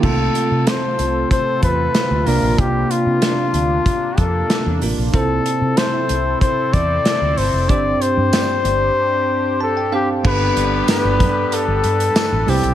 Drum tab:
CC |x---------------|----------------|----------------|----------------|
HH |--x-x-x-x-x-x-o-|x-x-x-x-x-x-x-o-|x-x-x-x-x-x-x-o-|x-x-x-x---------|
TB |----------------|----------------|----------------|----x-----------|
SD |----o-------o---|----o-------o---|----o-------o---|----o-----------|
BD |o-------o-o-----|o-------o-o-----|o-------o-o-----|o---------------|

CC |x---------------|
HH |--x-x-x-x-xxx-ox|
TB |----x-------x---|
SD |----o-------o---|
BD |o-----o---------|